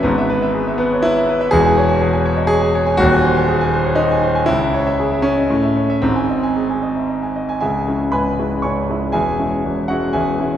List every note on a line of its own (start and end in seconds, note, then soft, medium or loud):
0.03 1.48 G#1 medium
0.03 1.48 G#2 loud
0.03 0.76 B3 loud
0.18 0.37 E5 medium
0.30 0.49 B4 medium
0.42 0.62 E5 medium
0.55 0.74 G#4 medium
0.67 0.86 E5 medium
0.78 1.03 B3 loud
0.78 0.99 B4 medium
0.93 1.04 C#5 medium
1.02 1.52 E4 loud
1.02 1.23 B4 medium
1.17 1.36 E5 medium
1.29 1.48 B4 medium
1.41 1.53 E5 medium
1.51 2.95 E1 loud
1.51 2.95 E2 loud
1.51 2.00 G#4 loud
1.65 1.85 G#5 medium
1.78 1.97 C#5 medium
1.89 2.09 G#5 medium
2.02 2.21 G#4 medium
2.13 2.33 G#5 medium
2.25 2.45 C#5 medium
2.37 2.50 D#5 medium
2.47 2.97 G#4 loud
2.47 2.69 C#5 medium
2.62 2.81 G#5 medium
2.75 2.94 C#5 medium
2.86 2.99 G#5 medium
2.97 4.43 D#1 loud
2.97 4.44 D#2 loud
2.97 3.97 F#4 loud
3.12 3.31 G#5 medium
3.24 3.44 C5 medium
3.37 3.56 G#5 medium
3.48 3.68 G#4 medium
3.61 3.81 G#5 medium
3.73 3.93 C5 medium
3.86 3.98 C#5 medium
3.95 4.21 D#4 loud
3.95 4.17 C5 medium
4.11 4.31 G#5 medium
4.23 4.43 C5 medium
4.35 4.48 G#5 medium
4.46 5.46 C#2 medium
4.46 5.23 E4 loud
4.61 4.81 E5 medium
4.74 4.94 C#5 medium
4.87 5.06 E5 medium
4.99 5.19 G#4 medium
5.12 5.32 E5 medium
5.22 6.01 C#4 loud
5.22 5.44 C#5 medium
5.37 5.50 D#5 medium
5.50 6.01 A2 medium
5.63 5.84 E5 medium
5.77 5.97 C#5 medium
5.90 6.03 E5 medium
6.02 7.57 G#1 medium
6.02 7.58 G#2 medium
6.02 7.09 C4 loud
6.16 6.37 G#5 medium
6.30 6.51 D#5 medium
6.43 6.64 G#5 medium
6.56 6.77 G#4 medium
6.70 6.91 G#5 medium
6.83 7.04 D#5 medium
6.96 7.09 E5 medium
7.09 7.30 D#5 medium
7.23 7.44 G#5 medium
7.36 7.57 D#5 medium
7.49 7.59 G#5 medium
7.60 7.87 C#1 medium
7.60 7.87 C#2 medium
7.60 8.09 G#4 medium
7.60 8.09 E5 medium
7.60 8.11 G#5 medium
7.88 8.11 G#3 soft
7.88 8.11 C#4 medium
7.88 8.11 E4 medium
8.12 8.38 C#1 medium
8.12 8.38 C#2 medium
8.12 8.59 B4 medium
8.12 8.60 G#5 medium
8.12 8.63 B5 medium
8.39 8.61 G#3 medium
8.39 8.62 C#4 medium
8.39 8.61 E4 medium
8.62 8.88 C#1 medium
8.62 8.88 C#2 medium
8.62 9.10 C#5 medium
8.62 9.10 G#5 soft
8.62 9.13 C#6 medium
8.89 9.12 G#3 medium
8.89 9.12 C#4 soft
8.89 9.12 E4 medium
9.12 9.38 E1 medium
9.12 9.38 E2 medium
9.12 9.85 G#4 medium
9.12 9.85 E5 medium
9.12 9.89 G#5 medium
9.39 9.62 G#3 soft
9.39 9.62 C#4 medium
9.39 9.62 E4 medium
9.65 9.89 E1 medium
9.65 9.89 E2 medium
9.88 10.12 G#3 medium
9.88 10.12 C#4 medium
9.88 10.12 E4 medium
9.88 10.12 F#4 medium
9.88 10.13 F#5 medium
10.13 10.38 E1 medium
10.13 10.38 E2 medium
10.13 10.57 G#4 medium
10.13 10.57 E5 medium
10.13 10.57 G#5 medium
10.40 10.57 G#3 soft
10.40 10.57 C#4 medium
10.40 10.57 E4 medium